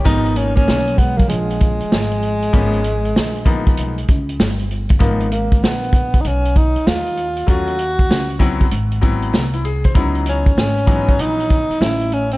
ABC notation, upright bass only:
X:1
M:4/4
L:1/16
Q:"Swing 16ths" 1/4=97
K:G#dor
V:1 name="Upright bass" clef=bass
G,,,4 B,,,4 A,,,3 z G,,,4 | G,,,4 z4 B,,,2 C,,2 =G,,,4 | G,,,4 A,,,4 B,,,3 z D,,4 | D,,4 C,,4 G,,,4 ^B,,,4 |
C,,4 G,,,4 A,,,3 z =A,,,4 |]